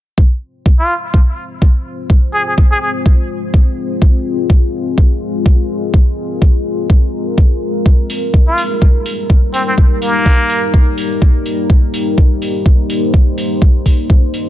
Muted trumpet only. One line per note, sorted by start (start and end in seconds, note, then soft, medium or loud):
0.80 0.94 F4 medium
2.34 2.43 G#4 medium
2.47 2.54 G#4 medium
2.72 2.78 G#4 medium
2.82 2.91 G#4 medium
8.47 8.62 F4 medium
9.54 9.63 C4 medium
9.68 9.74 C4 medium
10.02 10.70 A#3 medium